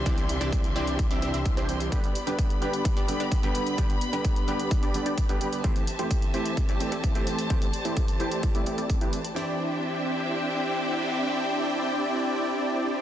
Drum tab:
HH |xxxxxxxxxxxxxxxx|xxxxxxxxxxxxxxxx|xxxxxxxxxxxxxxxx|xxxxxxxxxxxxxxxx|
BD |o---o---o---o---|o---o---o---o---|o---o---o---o---|o---o---o---o---|

HH |xxxxxxxxxxxxxxxx|----------------|----------------|
BD |o---o---o---o---|----------------|----------------|